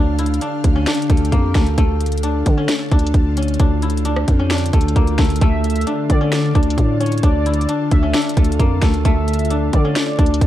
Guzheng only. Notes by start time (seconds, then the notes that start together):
Already playing: A3 D4 A4
0.19 E4
0.42 D4
0.76 C#4
0.87 D4
1.10 A3
1.32 A#3
1.55 A3
1.78 A3
2.23 D4
2.57 C#4
2.92 D4
3.37 C#4
3.60 D4
3.82 E4
4.05 D4
4.39 C#4
4.50 D4
4.73 A3
4.96 A#3
5.19 A3
5.41 A3
5.87 D4
6.21 C#4
6.55 D4
7.00 C#4
7.24 D4
7.46 E4
7.69 D4
8.03 C#4
8.14 D4
8.37 A3
8.59 A#3
8.82 A3
9.05 A3
9.51 D4
9.85 C#4
10.19 D4